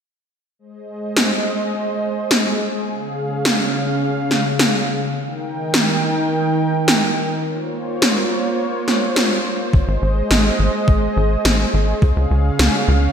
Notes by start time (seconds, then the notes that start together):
0.59 G#3 G#4 C5 D#5
1.17 snare
2.31 snare
2.88 C#3 C#4 F5
3.45 snare
4.31 snare
4.59 snare
5.17 D#3 D#4 A#4 G5
5.74 snare
6.88 snare
7.45 A#3 F4 C5 C#5
8.02 snare
8.88 snare
9.16 snare
9.73 G#1 G#3 G#4 D#5, kick
9.88 G#1
10.02 G#1
10.31 G#1, snare
10.59 G#1
10.88 G#1, kick
11.17 G#1
11.45 G#1, snare
11.74 G#1
12.02 C#2 C#3 C#4 F5, kick
12.16 C#2
12.31 C#2
12.59 C#2, snare
12.88 C#2